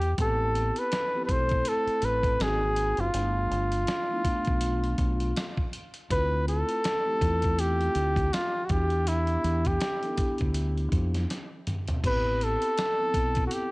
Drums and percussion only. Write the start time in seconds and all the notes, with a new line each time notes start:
0.02 closed hi-hat
0.18 kick, closed hi-hat
0.55 closed hi-hat
0.76 closed hi-hat
0.92 snare, closed hi-hat
1.29 kick, closed hi-hat
1.49 kick, closed hi-hat
1.65 closed hi-hat
1.88 closed hi-hat
2.02 closed hi-hat
2.23 kick, closed hi-hat
2.40 snare, closed hi-hat
2.76 closed hi-hat
2.97 closed hi-hat
3.14 closed hi-hat
3.52 closed hi-hat
3.72 closed hi-hat
3.87 snare, closed hi-hat
4.25 kick, closed hi-hat
4.45 kick, closed hi-hat
4.61 closed hi-hat
4.84 closed hi-hat
4.98 kick, closed hi-hat
5.20 closed hi-hat
5.36 snare, closed hi-hat
5.57 kick
5.73 closed hi-hat
5.94 closed hi-hat
6.11 kick, closed hi-hat
6.48 closed hi-hat
6.69 closed hi-hat
6.84 snare, closed hi-hat
7.21 kick, closed hi-hat
7.42 kick, closed hi-hat
7.59 closed hi-hat
7.81 closed hi-hat
7.95 closed hi-hat
8.16 kick, closed hi-hat
8.33 snare, closed hi-hat
8.69 kick, closed hi-hat
8.90 closed hi-hat
9.07 closed hi-hat
9.27 closed hi-hat
9.44 closed hi-hat
9.65 kick, closed hi-hat
9.80 snare, closed hi-hat
10.03 closed hi-hat
10.17 kick, closed hi-hat
10.38 kick, closed hi-hat
10.54 closed hi-hat
10.77 closed hi-hat
10.92 kick, closed hi-hat
11.14 snare, closed hi-hat
11.30 snare, closed hi-hat
11.67 closed hi-hat, mid tom
11.88 closed hi-hat, floor tom
12.04 kick, closed hi-hat, crash
12.41 closed hi-hat
12.62 closed hi-hat
12.78 snare, closed hi-hat
13.14 kick, closed hi-hat
13.35 kick, closed hi-hat
13.51 closed hi-hat